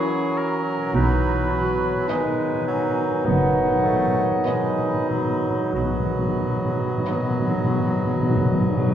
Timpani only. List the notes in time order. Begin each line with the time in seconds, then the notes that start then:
0.95 B2
1.17 B2
1.24 B2
1.29 B2
1.37 B2
1.45 B2
1.52 B2
1.61 B2
1.68 B2
1.76 B2
1.82 B2
1.89 B2
1.95 B2
2.03 B2
2.11 B2
2.26 B2
2.33 B2
2.40 B2
2.47 B2
2.55 B2
2.62 B2
2.69 B2
2.76 B2
2.82 B2
2.89 B2
2.98 B2
3.04 B2
3.12 B2
3.19 B2
3.26 B2
3.34 B2
3.40 B2
3.48 B2
3.55 B2
3.63 B2
3.70 B2
3.77 B2
3.85 B2
3.92 B2
4.00 B2
4.08 B2
4.14 B2
4.24 B2
4.31 B2
4.39 B2
4.48 B2
4.54 B2
4.62 B2
4.70 B2
4.79 B2
4.86 B2
4.94 B2
5.03 B2
5.11 B2
5.17 B2
5.25 B2
5.34 B2
5.42 B2
5.50 B2
5.59 B2
5.67 B2
5.76 B2
5.83 B2
5.91 B2
6.00 B2
6.08 B2
6.17 B2
6.25 B2
6.34 B2
6.42 B2
6.50 B2
6.57 B2
6.66 B2
6.75 B2
6.81 B2
6.90 B2
6.98 B2
7.05 B2
7.14 B2
7.23 B2
7.31 B2
7.40 B2
7.48 B2
7.56 B2
7.64 B2
7.72 B2
7.80 B2
7.88 B2
7.96 B2
8.05 B2
8.13 B2
8.21 B2
8.29 B2
8.37 B2
8.45 B2
8.53 B2
8.61 B2
8.69 B2
8.77 B2
8.86 B2